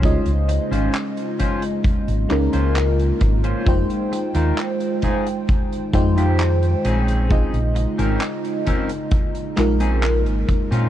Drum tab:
HH |xxxxxxxxxxxxxxxx|xxxxxxxxxxxxxxxx|xxxxxxxxxxxxxxxx|
CP |----x-----x-x---|----x-------x---|----x-----x-x---|
BD |o-----o-o-----o-|o-----o-o-o-----|o-----o-o-----o-|